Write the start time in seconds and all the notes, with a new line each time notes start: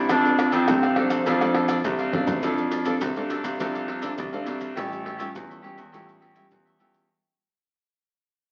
Already playing: E4
0.09 F2 F3 D4 A4 D5 F5, pandeiro, tamborim, maracas, surdo
0.25 C4 D4 A4, pandeiro, maracas
0.38 D4 A4 D5 F5, pandeiro, tamborim, maracas, surdo
0.51 F2 C4 D4 A4 D5 F5, pandeiro, maracas, surdo
0.68 C2 C3 C4 D4 A4, pandeiro, tamborim, maracas, surdo
0.82 A4 D5 F5, pandeiro, tamborim, maracas
0.96 F3 C4 D4 A4 D5 F5, pandeiro, tamborim
1.10 A4 D5 F5, pandeiro, tamborim, maracas, surdo
1.26 F2 F3 D4 A4 D5 F5, pandeiro, maracas, surdo
1.41 C4 D4 A4 D5 F5, pandeiro, tamborim, maracas
1.54 D4 A4 D5 F5, pandeiro, tamborim
1.68 D4 A4 D5 F5, pandeiro, tamborim, maracas, surdo
1.84 C2 C3 C4 D4 A4, pandeiro, maracas, surdo
1.99 A4 D5 F5, pandeiro, maracas
2.13 C4 D4 A4 D5 F5, pandeiro, surdo
2.27 C2, pandeiro, maracas, surdo
2.43 F2 F3 C4 D4 A4 D5 F5, pandeiro, maracas, surdo
2.58 pandeiro, maracas
2.71 D4 A4 D5 F5, pandeiro, maracas, surdo
2.85 C4 D4 A4 D5 F5, pandeiro, maracas, surdo
3.01 C2 C3, pandeiro, maracas, surdo
3.16 C4 D4 A4 D5 F5, pandeiro, maracas
3.30 D4 A4 D5 F5, pandeiro, maracas
3.44 C2 A4 D5 F5, pandeiro, maracas, surdo
3.59 C2 F3 C4 D4 A4 D5 F5, pandeiro, maracas, surdo
3.74 A4 D5 F5, pandeiro, maracas
3.88 D4 A4 D5 F5, pandeiro
4.02 C4 D4 A4 D5 F5, pandeiro, maracas, surdo
4.18 C2 C3, pandeiro, maracas, surdo
4.33 C4 D4 A4 D5 F5, pandeiro, maracas
4.46 C2 D4 A4 D5 F5, pandeiro, maracas
4.61 pandeiro, maracas, surdo
4.76 A1 A2 G3 C#4 F4 G4 A4 C#5 E5, pandeiro, maracas, surdo
4.92 pandeiro, maracas
5.04 G4 A4 C#5 E5, pandeiro, surdo
5.18 G3 C#4 F4 G4 A4 C#5 E5, pandeiro, maracas, surdo
5.35 E2 E3, pandeiro, maracas, surdo
5.49 A4 C#5 E5, pandeiro, maracas
5.62 G3 C#4 F4 G4 A4 C#5 E5, pandeiro
5.76 E2 A4 C#5 E5, pandeiro, maracas, surdo
5.92 E2 A2 G3 C#4 F4 G4 A4 C#5 E5, pandeiro, maracas, surdo
6.06 A4 C#5 E5, pandeiro, maracas
6.20 G4 A4 C#5 E5, pandeiro
6.34 G3 C#4 F4 G4 A4 C#5 E5, pandeiro, maracas, surdo
6.51 E2 E3, pandeiro, maracas, surdo
6.65 A4 C#5 E5, pandeiro, maracas
6.79 E2 G3 C#4 F4 G4 A4 C#5 E5, pandeiro, maracas
6.94 pandeiro, maracas, surdo